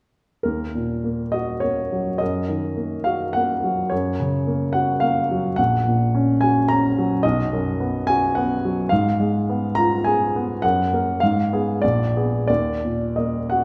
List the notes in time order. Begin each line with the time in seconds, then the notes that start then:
0.43 D#2 A#4
0.75 A#2
1.04 A#3
1.32 F#4 D#5
1.60 A#3 C#5
1.92 F#3
2.18 F#2 D#5
2.49 D#3
2.77 A#3
3.04 F#4 F5
3.33 A#3 F#5
3.64 F#3
3.90 F#2 C#5
4.20 C#3
4.47 A#3
4.73 F#4 F#5
5.00 A#3 F5
5.31 F#3
5.56 A#1 F#5
5.88 A#2
6.15 C#4
6.41 F#4 G#5
6.68 C#4 A#5
6.98 F#3
7.23 B1 D#5
7.53 F#2
7.80 B3
8.07 F#4 G#5
8.35 B3 F#5
8.65 F#3
8.89 G#2 F5
9.20 G#3
9.49 B3
9.75 F4 A#5
10.04 G#4 G#5
10.36 B3
10.62 F#2 F#5
10.93 A#3 A#4
11.20 G#2 F5
11.53 B3 G#4
11.82 A#1 D5
12.17 B3 G#4
12.48 D#2 D5
12.85 A#2
13.16 A#3 D#5
13.50 F#4 F#5